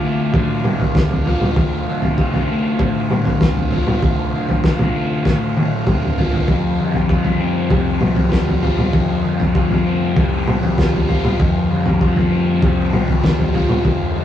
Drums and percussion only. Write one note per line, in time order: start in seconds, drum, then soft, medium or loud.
0.34 kick loud
0.34 floor tom medium
0.64 mid tom medium
0.80 floor tom medium
0.95 kick loud
0.95 snare medium
1.11 floor tom medium
1.26 floor tom medium
1.41 mid tom medium
1.56 kick loud
1.56 floor tom medium
2.02 floor tom medium
2.18 kick loud
2.34 floor tom medium
2.79 kick loud
2.79 floor tom medium
3.11 mid tom medium
3.25 floor tom medium
3.41 kick loud
3.41 snare medium
3.56 floor tom medium
3.71 floor tom medium
3.87 mid tom medium
4.03 kick loud
4.03 floor tom medium
4.49 floor tom medium
4.64 kick loud
4.64 snare medium
4.79 floor tom medium
4.79 mid tom medium
5.25 kick loud
5.25 snare medium
5.57 high tom medium
5.87 kick loud
5.87 mid tom medium
6.02 mid tom medium
6.18 floor tom medium
6.33 floor tom medium
6.48 kick loud
6.48 floor tom medium
6.94 floor tom medium
7.09 kick loud
7.25 floor tom medium
7.70 kick loud
7.70 floor tom medium
8.01 mid tom medium
8.16 floor tom medium
8.32 kick loud
8.32 snare medium
8.48 floor tom medium
8.63 floor tom medium
8.78 mid tom medium
8.93 kick loud
8.93 floor tom medium
9.40 floor tom medium
9.55 kick loud
9.71 floor tom medium
10.16 kick loud
10.16 floor tom medium
10.48 mid tom medium
10.63 floor tom medium
10.78 kick loud
10.78 snare medium
10.94 floor tom medium
11.09 floor tom medium
11.25 mid tom medium
11.40 kick loud
11.40 floor tom medium
11.86 floor tom medium
12.01 kick loud
12.16 floor tom medium
12.62 kick loud
12.62 floor tom medium
12.93 mid tom medium
13.08 floor tom medium
13.24 kick loud
13.24 snare medium
13.39 floor tom medium
13.54 floor tom medium
13.69 mid tom medium
13.85 kick loud
13.85 floor tom medium